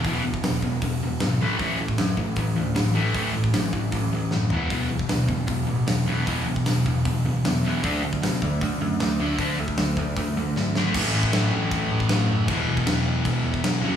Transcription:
<<
  \new Staff \with { instrumentName = "Distorted electric guitar" } { \clef bass \time 4/4 \key e \mixolydian \tempo 4 = 154 <e, b, e>8 <e, b,>8 <e, b,>8 <e, b,>8 <e, b,>8 <e, b,>8 <e, b,>8 <a, e a>8 | <a, e a>8 <a, e>8 <a, e>8 <a, e>8 <a, e>8 <a, e>8 <a, e>8 <a, e a>8 | <a, e a>8 <a, e>8 <a, e>8 <a, e>8 <a, e>8 <a, e>8 <a, e>8 <e, b, e>8 | <e, b, e>8 <e, b,>8 <e, b,>8 <e, b,>8 <e, b,>8 <e, b,>8 <e, b,>8 <e, b, e>8 |
<e, b, e>8 <e, b,>8 <e, b,>8 <e, b,>8 <e, b,>8 <e, b,>8 <e, b,>8 <e, b, e>8 | <d a d'>8 <d a>8 <d a>8 <d a>8 <d a>8 <d a>8 <d a>8 <d a d'>8 | <d a d'>8 <d a>8 <d a>8 <d a>8 <d a>8 <d a>8 <d a>8 <d a d'>8 | <a, e a>1 |
<e, b, e>2.~ <e, b, e>8 <fis, cis fis>8 | }
  \new Staff \with { instrumentName = "Picked electric bass" } { \clef bass \time 4/4 \key e \mixolydian e,,8 e,,8 e,,8 e,,8 e,,8 e,,8 gis,,8 a,,8 | a,,4 fis,8 a,,8 a,,8 d,8 a,,4 | a,,8 a,,8 a,,8 a,,8 a,,8 a,,8 fis,,8 e,,8 | e,,4 d,8 e,,8 e,,8 a,,8 e,,4 |
e,,8 e,,8 e,,8 e,,8 e,,8 e,,8 e,4 | d,4 b,8 d,8 d,8 fis,8 d,4 | d,8 d,8 d,8 d,8 d,8 d,8 gis,,4 | a,,8 a,,8 a,,8 a,,8 a,,8 a,,8 a,,8 fis,,8 |
e,,8 e,,8 e,,8 e,,8 e,,8 e,8 e,,8 fis,,8 | }
  \new DrumStaff \with { instrumentName = "Drums" } \drummode { \time 4/4 <hho bd>8. bd16 <hho sn>8 bd8 <hho bd>4 <hho sn>4 | <hho bd>8. bd16 <hho sn>8 bd8 <hho bd>4 <hho sn>4 | <hho bd>8. bd16 <hho sn>8 bd8 <hho bd>4 sn8 tomfh8 | <hho bd>8. bd16 <hho sn>8 bd8 <hho bd>4 <hho sn>4 |
<hho bd>8. bd16 <hho sn>8 bd8 <hho bd>4 <hho sn>4 | <hho bd>8. bd16 <hho sn>8 bd8 <hho bd>4 <hho sn>4 | <hho bd>8. bd16 <hho sn>8 bd8 <hho bd>4 sn8 sn8 | <cymc bd>8. bd16 <cymc sn>4 <cymc bd>8. bd16 <cymc sn>4 |
<cymc bd>8. bd16 <cymc sn>4 <cymc bd>8. bd16 <cymc sn>4 | }
>>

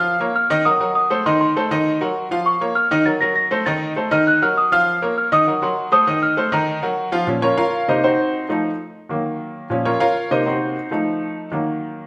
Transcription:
<<
  \new Staff \with { instrumentName = "Celesta" } { \time 4/4 \key bes \minor \tempo 4 = 199 f'''4 f'''4 ees'''4 ees'''4 | c'''8 c'''2. r8 | des'''4 f'''4 a'''8 bes'''8 bes'''4 | a'''4. f'''8 ges'''8 f'''8 ees'''8 f'''8~ |
f'''4 f'''8 ees'''4 c'''4 dis'''8~ | dis'''8 f'''4 bes''2 r8 | r1 | r1 |
r1 | r1 | }
  \new Staff \with { instrumentName = "Grand piano" } { \time 4/4 \key bes \minor <f f' f''>8 <bes bes' des''>4 <ees ees' ees''>8 <ges ges' bes'>8 <ges ges' bes'>4 <a a' c''>8 | <ees ees' ees''>4 <a a' c''>8 <ees ees' ees''>4 <ges ges' bes'>4 <f f' f''>8~ | <f f' f''>8 <bes bes' des''>4 <ees ees' ees''>8 <ges ges' bes'>8 <ges ges' bes'>4 <a a' c''>8 | <ees ees' ees''>4 <a a' c''>8 <ees ees' ees''>4 <ges ges' bes'>4 <f f' f''>8~ |
<f f' f''>8 <bes bes' des''>4 <ees ees' ees''>8 <fis fis' bes'>8 <fis fis' bes'>4 <a a' c''>8 | <ees ees' ees''>4 <a a' c''>8 <ees ees' ees''>4 <ges ges' bes'>4 <f f' f''>8 | r8 <des' f' bes' des''>8 <f' bes' des'' f''>4 <ees' bes' c'' ees''>8 <c' ees' ges' c''>4. | r1 |
r8 <des' f' bes' des''>8 <f' bes' des'' f''>4 <ees' bes' c'' ees''>8 <c' ees' ges' c''>4. | r1 | }
  \new Staff \with { instrumentName = "Grand piano" } { \clef bass \time 4/4 \key bes \minor r1 | r1 | r1 | r1 |
r1 | r1 | <bes, f des'>8 r4. <c bes>8 r4. | <f a ees'>8 r4. <ees ges bes>2 |
<bes, f des'>8 r4. <c bes>4. r8 | <f a ees'>2 <ees ges bes>2 | }
>>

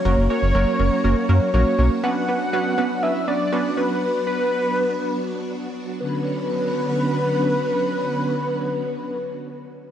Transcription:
<<
  \new Staff \with { instrumentName = "Analog synth lead" } { \time 4/4 \key b \minor \tempo 4 = 121 cis''8 cis''2~ cis''8 cis''8 cis''8 | fis''2 e''8 d''4 b'8~ | b'8 b'2. r8 | b'1~ |
b'1 | }
  \new Staff \with { instrumentName = "Analog polysynth" } { \time 4/4 \key b \minor <fis ais cis' fis' ais'>8 <fis ais cis' fis' ais'>8 <fis ais cis' fis' ais'>8 <fis ais cis' fis' ais'>8 <fis ais cis' fis' ais'>8 <fis ais cis' fis' ais'>8 <fis ais cis' fis' ais'>8 <fis ais cis' fis' ais'>8 | <b cis' d' fis' b'>8 <b cis' d' fis' b'>8 <b cis' d' fis' b'>8 <b cis' d' fis' b'>8 <b cis' d' fis' b'>8 <b cis' d' fis' b'>8 <b cis' d' fis' b'>8 <b cis' d' fis' b'>8 | r1 | r1 |
r1 | }
  \new Staff \with { instrumentName = "String machine" } { \time 4/4 \key b \minor << { <ais fis' ais'>1 | <b d'>1~ | <b d'>1 | <d fis b cis' fis'>1~ |
<d fis b cis' fis'>1 | } \\ { fis1~ | fis1~ | fis1 | r1 |
r1 | } >> }
  \new Staff \with { instrumentName = "Analog synth bass" } { \clef bass \time 4/4 \key b \minor fis,,16 fis,,16 r16 fis,,16 fis,,16 r16 fis,,16 r16 fis,,16 r16 fis,16 r16 ais,,16 r16 b,,16 r16 | r1 | r1 | r1 |
r1 | }
>>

